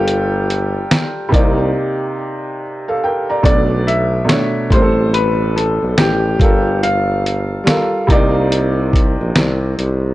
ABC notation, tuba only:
X:1
M:4/4
L:1/16
Q:"Swing 16ths" 1/4=71
K:Clyd
V:1 name="Tuba" clef=bass
G,,,4 z2 C,,2 z8 | B,,,4 z2 A,,,4- A,,, B,,, A,,,2 G,,,2- | G,,,4 z2 C,,4- C,, _B,,, C,,2 C,,2 |]